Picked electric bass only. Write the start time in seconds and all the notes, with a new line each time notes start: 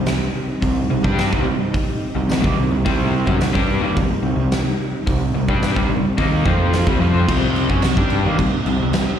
Already playing: C2
0.62 C2
0.90 C2
1.04 G2
1.32 C2
1.45 C2
1.59 muted picked electric bass stroke
1.74 muted picked electric bass stroke
2.15 C2
2.29 C2
2.44 D#2
2.57 C2
2.71 C2
2.85 C2
3.27 F#2
3.40 C2
3.55 G2
3.81 D#2
3.96 C2
4.09 muted picked electric bass stroke
4.22 C2
4.36 C2
5.07 C2
5.33 C2
5.48 G2
5.76 C2
5.88 C2
6.03 muted picked electric bass stroke
6.18 D#2
6.45 F2
6.86 C2
6.99 F2
7.28 C2
7.69 F#2
7.83 C2
7.97 G2
8.24 D#2
8.39 C2
8.52 muted picked electric bass stroke
8.65 C2
8.79 C2